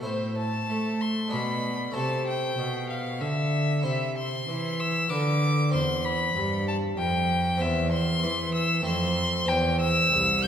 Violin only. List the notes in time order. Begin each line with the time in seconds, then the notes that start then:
0.04 C5
0.38 A5
1.02 C6
1.33 B5
1.96 A5
2.27 G5
2.89 F5
3.21 E5
3.85 E5
4.18 C6
4.80 E6
5.10 D6
5.73 C6
6.05 B5
6.68 A5
6.98 G5
7.61 E5
7.92 C6
8.55 E6
8.86 C6
9.48 G5
9.80 E6
10.43 G6